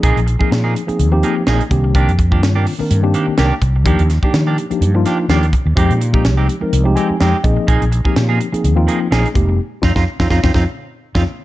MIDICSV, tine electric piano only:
0, 0, Header, 1, 2, 480
1, 0, Start_track
1, 0, Tempo, 478088
1, 34, Time_signature, 4, 2, 24, 8
1, 11491, End_track
2, 0, Start_track
2, 0, Title_t, "Tine electric piano"
2, 0, Program_c, 0, 4
2, 0, Note_on_c, 0, 53, 70
2, 0, Note_on_c, 0, 58, 74
2, 0, Note_on_c, 0, 60, 62
2, 0, Note_on_c, 0, 63, 72
2, 0, Note_on_c, 0, 68, 84
2, 207, Note_off_c, 0, 53, 0
2, 208, Note_off_c, 0, 58, 0
2, 210, Note_off_c, 0, 60, 0
2, 213, Note_off_c, 0, 63, 0
2, 216, Note_off_c, 0, 68, 0
2, 291, Note_on_c, 0, 68, 33
2, 346, Note_off_c, 0, 68, 0
2, 391, Note_on_c, 0, 53, 69
2, 393, Note_on_c, 0, 58, 62
2, 398, Note_on_c, 0, 60, 59
2, 400, Note_on_c, 0, 63, 66
2, 411, Note_on_c, 0, 68, 72
2, 806, Note_off_c, 0, 53, 0
2, 807, Note_off_c, 0, 58, 0
2, 810, Note_off_c, 0, 60, 0
2, 811, Note_off_c, 0, 63, 0
2, 816, Note_off_c, 0, 68, 0
2, 871, Note_on_c, 0, 53, 65
2, 872, Note_on_c, 0, 58, 67
2, 878, Note_on_c, 0, 60, 66
2, 883, Note_on_c, 0, 63, 64
2, 887, Note_on_c, 0, 68, 85
2, 1082, Note_off_c, 0, 53, 0
2, 1083, Note_off_c, 0, 58, 0
2, 1086, Note_off_c, 0, 60, 0
2, 1088, Note_off_c, 0, 63, 0
2, 1090, Note_off_c, 0, 68, 0
2, 1119, Note_on_c, 0, 53, 97
2, 1121, Note_on_c, 0, 58, 90
2, 1125, Note_on_c, 0, 60, 94
2, 1133, Note_on_c, 0, 63, 80
2, 1134, Note_on_c, 0, 67, 111
2, 1426, Note_off_c, 0, 53, 0
2, 1427, Note_off_c, 0, 58, 0
2, 1429, Note_off_c, 0, 60, 0
2, 1433, Note_off_c, 0, 63, 0
2, 1434, Note_off_c, 0, 67, 0
2, 1467, Note_on_c, 0, 53, 65
2, 1475, Note_on_c, 0, 60, 70
2, 1477, Note_on_c, 0, 58, 69
2, 1484, Note_on_c, 0, 63, 66
2, 1485, Note_on_c, 0, 68, 80
2, 1584, Note_off_c, 0, 53, 0
2, 1588, Note_off_c, 0, 60, 0
2, 1588, Note_off_c, 0, 63, 0
2, 1589, Note_off_c, 0, 58, 0
2, 1593, Note_off_c, 0, 68, 0
2, 1600, Note_on_c, 0, 63, 27
2, 1655, Note_off_c, 0, 63, 0
2, 1703, Note_on_c, 0, 51, 74
2, 1707, Note_on_c, 0, 58, 73
2, 1709, Note_on_c, 0, 60, 72
2, 1712, Note_on_c, 0, 62, 66
2, 1720, Note_on_c, 0, 67, 91
2, 2129, Note_off_c, 0, 51, 0
2, 2131, Note_off_c, 0, 58, 0
2, 2132, Note_off_c, 0, 60, 0
2, 2134, Note_off_c, 0, 62, 0
2, 2138, Note_off_c, 0, 67, 0
2, 2200, Note_on_c, 0, 67, 28
2, 2261, Note_off_c, 0, 67, 0
2, 2311, Note_on_c, 0, 58, 52
2, 2315, Note_on_c, 0, 51, 66
2, 2320, Note_on_c, 0, 60, 60
2, 2322, Note_on_c, 0, 62, 56
2, 2328, Note_on_c, 0, 65, 68
2, 2726, Note_off_c, 0, 58, 0
2, 2728, Note_off_c, 0, 51, 0
2, 2730, Note_off_c, 0, 60, 0
2, 2731, Note_off_c, 0, 62, 0
2, 2735, Note_off_c, 0, 65, 0
2, 2796, Note_on_c, 0, 51, 77
2, 2805, Note_on_c, 0, 58, 63
2, 2806, Note_on_c, 0, 60, 63
2, 2811, Note_on_c, 0, 62, 66
2, 2817, Note_on_c, 0, 70, 84
2, 3005, Note_off_c, 0, 51, 0
2, 3009, Note_off_c, 0, 58, 0
2, 3010, Note_off_c, 0, 60, 0
2, 3012, Note_off_c, 0, 62, 0
2, 3015, Note_off_c, 0, 70, 0
2, 3032, Note_on_c, 0, 51, 94
2, 3034, Note_on_c, 0, 58, 83
2, 3042, Note_on_c, 0, 60, 91
2, 3047, Note_on_c, 0, 62, 92
2, 3048, Note_on_c, 0, 67, 107
2, 3342, Note_off_c, 0, 51, 0
2, 3344, Note_off_c, 0, 58, 0
2, 3347, Note_off_c, 0, 60, 0
2, 3350, Note_off_c, 0, 62, 0
2, 3350, Note_off_c, 0, 67, 0
2, 3388, Note_on_c, 0, 51, 76
2, 3393, Note_on_c, 0, 58, 67
2, 3399, Note_on_c, 0, 60, 70
2, 3405, Note_on_c, 0, 70, 78
2, 3406, Note_on_c, 0, 62, 69
2, 3505, Note_off_c, 0, 51, 0
2, 3505, Note_off_c, 0, 62, 0
2, 3507, Note_off_c, 0, 58, 0
2, 3510, Note_off_c, 0, 60, 0
2, 3513, Note_off_c, 0, 70, 0
2, 3517, Note_on_c, 0, 62, 24
2, 3573, Note_off_c, 0, 62, 0
2, 3854, Note_on_c, 0, 53, 88
2, 3863, Note_on_c, 0, 58, 70
2, 3867, Note_on_c, 0, 62, 81
2, 3870, Note_on_c, 0, 63, 73
2, 3874, Note_on_c, 0, 67, 88
2, 4074, Note_off_c, 0, 53, 0
2, 4078, Note_off_c, 0, 58, 0
2, 4080, Note_off_c, 0, 62, 0
2, 4082, Note_off_c, 0, 63, 0
2, 4084, Note_off_c, 0, 67, 0
2, 4108, Note_on_c, 0, 63, 26
2, 4127, Note_on_c, 0, 65, 31
2, 4174, Note_off_c, 0, 63, 0
2, 4183, Note_off_c, 0, 65, 0
2, 4243, Note_on_c, 0, 53, 61
2, 4250, Note_on_c, 0, 58, 62
2, 4251, Note_on_c, 0, 62, 56
2, 4259, Note_on_c, 0, 63, 63
2, 4266, Note_on_c, 0, 67, 77
2, 4651, Note_off_c, 0, 53, 0
2, 4655, Note_off_c, 0, 58, 0
2, 4655, Note_off_c, 0, 62, 0
2, 4659, Note_off_c, 0, 63, 0
2, 4663, Note_off_c, 0, 67, 0
2, 4723, Note_on_c, 0, 58, 71
2, 4724, Note_on_c, 0, 53, 78
2, 4727, Note_on_c, 0, 62, 69
2, 4732, Note_on_c, 0, 63, 71
2, 4739, Note_on_c, 0, 67, 78
2, 4927, Note_off_c, 0, 58, 0
2, 4928, Note_off_c, 0, 53, 0
2, 4929, Note_off_c, 0, 62, 0
2, 4932, Note_off_c, 0, 63, 0
2, 4935, Note_off_c, 0, 67, 0
2, 4961, Note_on_c, 0, 58, 87
2, 4963, Note_on_c, 0, 53, 97
2, 4967, Note_on_c, 0, 62, 87
2, 4974, Note_on_c, 0, 63, 83
2, 4979, Note_on_c, 0, 65, 104
2, 5266, Note_off_c, 0, 58, 0
2, 5267, Note_off_c, 0, 53, 0
2, 5269, Note_off_c, 0, 62, 0
2, 5272, Note_off_c, 0, 63, 0
2, 5275, Note_off_c, 0, 65, 0
2, 5316, Note_on_c, 0, 53, 72
2, 5320, Note_on_c, 0, 58, 70
2, 5322, Note_on_c, 0, 62, 69
2, 5326, Note_on_c, 0, 63, 69
2, 5330, Note_on_c, 0, 67, 72
2, 5426, Note_off_c, 0, 63, 0
2, 5428, Note_off_c, 0, 53, 0
2, 5430, Note_off_c, 0, 58, 0
2, 5431, Note_off_c, 0, 62, 0
2, 5435, Note_off_c, 0, 67, 0
2, 5438, Note_on_c, 0, 63, 27
2, 5454, Note_on_c, 0, 70, 30
2, 5493, Note_off_c, 0, 63, 0
2, 5501, Note_off_c, 0, 70, 0
2, 5778, Note_on_c, 0, 53, 92
2, 5782, Note_on_c, 0, 56, 84
2, 5788, Note_on_c, 0, 60, 81
2, 5790, Note_on_c, 0, 67, 96
2, 5792, Note_on_c, 0, 63, 82
2, 5995, Note_off_c, 0, 53, 0
2, 5997, Note_off_c, 0, 56, 0
2, 6000, Note_off_c, 0, 60, 0
2, 6001, Note_off_c, 0, 67, 0
2, 6002, Note_off_c, 0, 63, 0
2, 6149, Note_on_c, 0, 56, 61
2, 6150, Note_on_c, 0, 53, 65
2, 6156, Note_on_c, 0, 60, 63
2, 6156, Note_on_c, 0, 63, 53
2, 6166, Note_on_c, 0, 67, 74
2, 6564, Note_off_c, 0, 53, 0
2, 6564, Note_off_c, 0, 56, 0
2, 6567, Note_off_c, 0, 60, 0
2, 6567, Note_off_c, 0, 63, 0
2, 6572, Note_off_c, 0, 67, 0
2, 6634, Note_on_c, 0, 53, 67
2, 6637, Note_on_c, 0, 56, 66
2, 6645, Note_on_c, 0, 60, 67
2, 6647, Note_on_c, 0, 63, 69
2, 6650, Note_on_c, 0, 70, 81
2, 6843, Note_off_c, 0, 53, 0
2, 6844, Note_off_c, 0, 56, 0
2, 6848, Note_off_c, 0, 60, 0
2, 6849, Note_off_c, 0, 63, 0
2, 6850, Note_off_c, 0, 70, 0
2, 6866, Note_on_c, 0, 53, 94
2, 6869, Note_on_c, 0, 56, 91
2, 6878, Note_on_c, 0, 60, 93
2, 6879, Note_on_c, 0, 63, 92
2, 6884, Note_on_c, 0, 67, 111
2, 6982, Note_on_c, 0, 80, 60
2, 7178, Note_off_c, 0, 53, 0
2, 7180, Note_off_c, 0, 56, 0
2, 7184, Note_off_c, 0, 60, 0
2, 7185, Note_off_c, 0, 63, 0
2, 7187, Note_off_c, 0, 67, 0
2, 7210, Note_off_c, 0, 80, 0
2, 7220, Note_on_c, 0, 53, 75
2, 7229, Note_on_c, 0, 56, 65
2, 7232, Note_on_c, 0, 60, 66
2, 7233, Note_on_c, 0, 79, 59
2, 7234, Note_on_c, 0, 63, 69
2, 7240, Note_on_c, 0, 67, 79
2, 7334, Note_off_c, 0, 63, 0
2, 7339, Note_off_c, 0, 53, 0
2, 7344, Note_off_c, 0, 56, 0
2, 7345, Note_off_c, 0, 60, 0
2, 7346, Note_on_c, 0, 63, 28
2, 7349, Note_off_c, 0, 67, 0
2, 7363, Note_on_c, 0, 67, 30
2, 7407, Note_off_c, 0, 63, 0
2, 7415, Note_off_c, 0, 67, 0
2, 7455, Note_off_c, 0, 79, 0
2, 7464, Note_on_c, 0, 53, 82
2, 7467, Note_on_c, 0, 75, 72
2, 7468, Note_on_c, 0, 58, 77
2, 7472, Note_on_c, 0, 60, 70
2, 7478, Note_on_c, 0, 63, 75
2, 7482, Note_on_c, 0, 68, 88
2, 7692, Note_off_c, 0, 75, 0
2, 7888, Note_off_c, 0, 53, 0
2, 7890, Note_off_c, 0, 58, 0
2, 7892, Note_off_c, 0, 60, 0
2, 7895, Note_off_c, 0, 63, 0
2, 7897, Note_off_c, 0, 68, 0
2, 7964, Note_on_c, 0, 68, 32
2, 8021, Note_off_c, 0, 68, 0
2, 8076, Note_on_c, 0, 53, 70
2, 8084, Note_on_c, 0, 58, 59
2, 8084, Note_on_c, 0, 60, 64
2, 8087, Note_on_c, 0, 63, 61
2, 8095, Note_on_c, 0, 67, 73
2, 8487, Note_off_c, 0, 53, 0
2, 8491, Note_off_c, 0, 58, 0
2, 8491, Note_off_c, 0, 60, 0
2, 8493, Note_off_c, 0, 63, 0
2, 8496, Note_off_c, 0, 67, 0
2, 8557, Note_on_c, 0, 53, 76
2, 8559, Note_on_c, 0, 58, 73
2, 8568, Note_on_c, 0, 60, 65
2, 8568, Note_on_c, 0, 63, 67
2, 8570, Note_on_c, 0, 68, 81
2, 8764, Note_off_c, 0, 53, 0
2, 8765, Note_off_c, 0, 58, 0
2, 8769, Note_off_c, 0, 60, 0
2, 8769, Note_off_c, 0, 63, 0
2, 8770, Note_off_c, 0, 68, 0
2, 8788, Note_on_c, 0, 53, 94
2, 8791, Note_on_c, 0, 58, 91
2, 8796, Note_on_c, 0, 60, 95
2, 8799, Note_on_c, 0, 63, 84
2, 8804, Note_on_c, 0, 65, 106
2, 9099, Note_off_c, 0, 53, 0
2, 9100, Note_off_c, 0, 58, 0
2, 9103, Note_off_c, 0, 60, 0
2, 9105, Note_off_c, 0, 63, 0
2, 9107, Note_off_c, 0, 65, 0
2, 9142, Note_on_c, 0, 53, 76
2, 9151, Note_on_c, 0, 58, 70
2, 9156, Note_on_c, 0, 60, 66
2, 9160, Note_on_c, 0, 63, 68
2, 9163, Note_on_c, 0, 68, 84
2, 9260, Note_off_c, 0, 53, 0
2, 9264, Note_off_c, 0, 63, 0
2, 9265, Note_off_c, 0, 58, 0
2, 9267, Note_off_c, 0, 60, 0
2, 9271, Note_off_c, 0, 68, 0
2, 9276, Note_on_c, 0, 63, 26
2, 9331, Note_off_c, 0, 63, 0
2, 9376, Note_on_c, 0, 56, 75
2, 9383, Note_on_c, 0, 58, 69
2, 9384, Note_on_c, 0, 60, 66
2, 9393, Note_on_c, 0, 63, 62
2, 9393, Note_on_c, 0, 67, 85
2, 9624, Note_off_c, 0, 56, 0
2, 9627, Note_off_c, 0, 58, 0
2, 9628, Note_off_c, 0, 60, 0
2, 9632, Note_off_c, 0, 63, 0
2, 9632, Note_off_c, 0, 67, 0
2, 9858, Note_on_c, 0, 65, 80
2, 9859, Note_on_c, 0, 60, 82
2, 9859, Note_on_c, 0, 63, 93
2, 9948, Note_off_c, 0, 60, 0
2, 9948, Note_off_c, 0, 65, 0
2, 9949, Note_off_c, 0, 63, 0
2, 9994, Note_on_c, 0, 60, 80
2, 9994, Note_on_c, 0, 63, 77
2, 9996, Note_on_c, 0, 65, 68
2, 10067, Note_off_c, 0, 60, 0
2, 10067, Note_off_c, 0, 63, 0
2, 10068, Note_off_c, 0, 65, 0
2, 10239, Note_on_c, 0, 60, 82
2, 10239, Note_on_c, 0, 65, 82
2, 10241, Note_on_c, 0, 63, 80
2, 10310, Note_off_c, 0, 60, 0
2, 10310, Note_off_c, 0, 65, 0
2, 10312, Note_off_c, 0, 63, 0
2, 10349, Note_on_c, 0, 63, 80
2, 10350, Note_on_c, 0, 65, 75
2, 10353, Note_on_c, 0, 60, 73
2, 10435, Note_off_c, 0, 63, 0
2, 10435, Note_off_c, 0, 65, 0
2, 10437, Note_off_c, 0, 60, 0
2, 10480, Note_on_c, 0, 63, 80
2, 10480, Note_on_c, 0, 65, 85
2, 10482, Note_on_c, 0, 60, 84
2, 10551, Note_off_c, 0, 63, 0
2, 10551, Note_off_c, 0, 65, 0
2, 10552, Note_off_c, 0, 60, 0
2, 10585, Note_on_c, 0, 60, 83
2, 10586, Note_on_c, 0, 65, 81
2, 10589, Note_on_c, 0, 63, 90
2, 10672, Note_off_c, 0, 60, 0
2, 10673, Note_off_c, 0, 65, 0
2, 10675, Note_off_c, 0, 63, 0
2, 11205, Note_on_c, 0, 63, 77
2, 11208, Note_on_c, 0, 60, 89
2, 11208, Note_on_c, 0, 65, 84
2, 11274, Note_off_c, 0, 63, 0
2, 11276, Note_off_c, 0, 60, 0
2, 11276, Note_off_c, 0, 65, 0
2, 11491, End_track
0, 0, End_of_file